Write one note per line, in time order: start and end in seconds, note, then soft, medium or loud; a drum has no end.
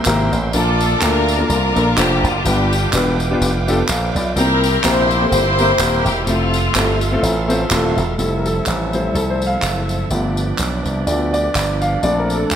0.00 0.28 C3 medium
0.00 2.42 A#3 medium
0.00 0.52 E5 medium
0.00 0.52 G5 medium
0.00 0.52 C6 medium
0.05 0.28 G#1 loud
0.05 0.33 A#3 loud
0.05 0.33 C4 medium
0.05 0.33 E4 medium
0.05 0.34 G4 medium
0.05 0.34 A#4 loud
0.05 0.51 E5 medium
0.05 clap medium
0.05 tambourine loud
0.32 0.50 A1 medium
0.32 tambourine medium
0.53 0.94 A#1 loud
0.53 1.25 A#2 medium
0.53 0.81 A#3 medium
0.53 0.81 D4 medium
0.53 1.01 D4 medium
0.53 1.01 F4 medium
0.53 0.81 F4 medium
0.53 0.99 A4 loud
0.53 0.82 A4 medium
0.53 0.82 A#4 medium
0.53 4.33 F5 medium
0.53 2.43 A5 medium
0.53 2.43 D6 medium
0.53 tambourine medium
0.81 tambourine medium
1.01 1.42 D2 loud
1.01 1.22 A#3 medium
1.01 1.22 D4 medium
1.01 1.49 D4 medium
1.01 1.22 F4 medium
1.01 1.49 F4 medium
1.01 1.22 A4 medium
1.01 1.49 A#4 loud
1.01 1.23 A#4 medium
1.01 clap medium
1.01 tambourine loud
1.28 tambourine medium
1.38 1.56 A#3 medium
1.38 1.56 D4 medium
1.38 1.57 F4 medium
1.38 1.57 A4 medium
1.38 1.57 A#4 medium
1.49 1.72 C2 medium
1.49 2.41 D4 medium
1.49 2.24 F4 medium
1.49 1.94 A#4 loud
1.49 tambourine medium
1.75 1.94 A#1 medium
1.75 1.86 A#3 medium
1.75 1.87 D4 medium
1.75 1.87 F4 medium
1.75 1.87 A4 medium
1.75 1.88 A#4 medium
1.75 tambourine medium
1.97 2.20 F1 loud
1.97 2.24 A#3 medium
1.97 2.24 D4 medium
1.97 2.25 F4 medium
1.97 2.24 G4 loud
1.97 2.25 A4 medium
1.97 2.25 C5 medium
1.97 clap medium
1.97 tambourine medium
2.23 2.42 F#1 medium
2.23 2.46 F4 medium
2.23 tambourine medium
2.44 2.86 G1 loud
2.44 3.16 G2 medium
2.44 2.72 B3 medium
2.44 3.37 B3 medium
2.44 2.72 D4 medium
2.44 3.37 D4 medium
2.44 2.72 F4 medium
2.44 2.73 G4 medium
2.44 2.93 G4 medium
2.44 4.34 B4 medium
2.44 2.73 B4 medium
2.44 6.24 G5 medium
2.44 4.35 D6 medium
2.44 tambourine medium
2.73 tambourine medium
2.92 3.34 E1 loud
2.92 3.13 B3 medium
2.92 3.13 D4 medium
2.92 3.14 F4 medium
2.92 3.14 G4 medium
2.92 3.14 B4 medium
2.92 clap loud
2.92 tambourine loud
3.20 tambourine medium
3.30 3.48 B3 medium
3.30 3.48 D4 medium
3.30 3.49 F4 medium
3.30 3.49 G4 medium
3.30 3.49 B4 loud
3.41 3.81 F1 loud
3.41 tambourine medium
3.67 3.78 B3 loud
3.67 3.79 D4 medium
3.67 3.79 F4 medium
3.67 3.79 G4 medium
3.67 3.79 A4 loud
3.67 tambourine medium
3.89 4.11 A#1 loud
3.89 4.15 A4 medium
3.89 4.14 F5 medium
3.89 clap medium
3.89 tambourine loud
4.15 4.33 B1 loud
4.15 4.61 F4 medium
4.15 4.61 D5 medium
4.15 tambourine medium
4.36 4.77 C2 loud
4.36 5.07 C3 medium
4.36 4.64 A#3 medium
4.36 4.64 C4 medium
4.36 4.84 E4 medium
4.36 4.64 E4 medium
4.36 4.83 G4 medium
4.36 4.64 G4 medium
4.36 6.26 A#4 medium
4.36 4.81 A#4 loud
4.36 4.65 A#4 medium
4.36 8.15 E5 medium
4.36 8.15 C6 medium
4.36 tambourine medium
4.64 tambourine medium
4.84 5.25 A#1 medium
4.84 5.05 A#3 medium
4.84 5.05 C4 medium
4.84 5.05 E4 medium
4.84 5.32 E4 medium
4.84 5.31 G4 medium
4.84 5.05 G4 medium
4.84 5.05 A#4 medium
4.84 5.30 C5 loud
4.84 clap loud
4.84 tambourine loud
5.11 tambourine medium
5.20 5.39 A#3 medium
5.20 5.39 C4 medium
5.20 5.39 E4 medium
5.20 5.40 G4 medium
5.20 5.40 A4 medium
5.31 5.72 G1 loud
5.31 6.24 E4 medium
5.31 6.05 G4 medium
5.31 6.02 C5 loud
5.31 tambourine medium
5.58 5.69 A#3 medium
5.58 5.69 C4 medium
5.58 5.70 E4 medium
5.58 5.70 G4 medium
5.58 5.70 A#4 medium
5.58 tambourine medium
5.79 6.02 D#1 medium
5.79 6.07 A#3 medium
5.79 6.07 C4 medium
5.79 6.07 E4 medium
5.79 6.08 G4 medium
5.79 6.08 A#4 medium
5.79 clap loud
5.79 tambourine loud
6.05 6.24 E1 loud
6.05 6.28 G4 medium
6.05 tambourine medium
6.26 6.68 F1 loud
6.26 6.54 A3 medium
6.26 7.20 A3 medium
6.26 6.54 C4 medium
6.26 7.20 C4 medium
6.26 6.55 E4 medium
6.26 7.19 F4 loud
6.26 6.55 F4 medium
6.26 8.17 A4 medium
6.26 6.55 A4 medium
6.26 8.17 F5 medium
6.26 tambourine medium
6.54 tambourine medium
6.74 7.16 G1 medium
6.74 6.95 A3 medium
6.74 6.96 C4 medium
6.74 6.96 E4 medium
6.74 6.96 F4 medium
6.74 6.96 A4 medium
6.74 clap loud
6.74 tambourine loud
7.01 tambourine medium
7.11 7.30 A3 medium
7.11 7.30 C4 medium
7.11 7.31 E4 medium
7.11 7.31 F4 medium
7.11 7.31 A4 loud
7.23 7.64 A1 medium
7.23 tambourine medium
7.48 7.60 A3 medium
7.48 7.60 C4 medium
7.48 7.60 E4 medium
7.48 7.61 F4 medium
7.48 7.61 C5 loud
7.48 tambourine medium
7.70 7.94 D#1 loud
7.70 7.98 A3 loud
7.70 7.98 C4 medium
7.70 7.99 E4 medium
7.70 7.99 F4 medium
7.70 7.99 A4 loud
7.70 clap loud
7.70 tambourine loud
7.97 8.16 E1 loud
7.97 tambourine medium
8.18 8.60 F1 loud
8.18 11.99 F3 medium
8.18 12.55 F3 medium
8.18 8.92 G3 medium
8.18 8.92 A3 soft
8.18 10.09 A3 medium
8.18 10.09 C4 medium
8.18 8.93 E4 medium
8.18 10.09 E4 medium
8.18 10.09 A4 medium
8.18 8.37 A4 medium
8.18 10.09 E5 medium
8.18 tambourine medium
8.38 8.46 A#4 medium
8.46 8.95 A4 medium
8.46 tambourine medium
8.66 9.08 A1 medium
8.66 clap medium
8.66 tambourine medium
8.93 9.13 G3 soft
8.93 9.13 A3 soft
8.93 9.13 E4 medium
8.93 9.16 C5 medium
8.93 tambourine medium
9.14 9.56 C2 medium
9.14 9.20 A4 medium
9.14 tambourine medium
9.30 9.47 C5 medium
9.42 tambourine soft
9.47 9.70 F5 medium
9.62 10.03 F#1 medium
9.62 clap medium
9.62 tambourine medium
9.89 tambourine soft
10.10 10.52 G1 loud
10.10 12.01 G3 medium
10.10 10.44 A3 soft
10.10 10.44 B3 soft
10.10 12.01 B3 medium
10.10 12.02 B3 medium
10.10 12.55 D4 medium
10.10 10.45 F4 medium
10.10 12.01 G4 medium
10.10 12.55 D5 medium
10.10 tambourine medium
10.37 tambourine medium
10.59 10.82 B1 medium
10.59 clap medium
10.59 tambourine medium
10.85 11.04 C2 medium
10.85 tambourine medium
11.07 11.48 D2 medium
11.07 11.31 A3 soft
11.07 11.31 B3 soft
11.07 11.31 F4 medium
11.07 11.32 D5 medium
11.07 tambourine medium
11.33 11.83 D5 loud
11.33 tambourine medium
11.55 11.96 G1 medium
11.55 clap medium
11.55 tambourine medium
11.82 12.04 F5 medium
11.82 tambourine medium
12.03 12.44 A#1 loud
12.03 12.55 F3 medium
12.03 12.55 A3 medium
12.03 12.55 C4 soft
12.03 12.55 D4 medium
12.03 12.55 A4 medium
12.03 12.20 D5 medium
12.03 tambourine medium
12.19 12.36 A#4 medium
12.30 tambourine medium
12.35 12.55 A4 medium
12.51 12.55 D2 medium
12.51 clap medium
12.51 tambourine medium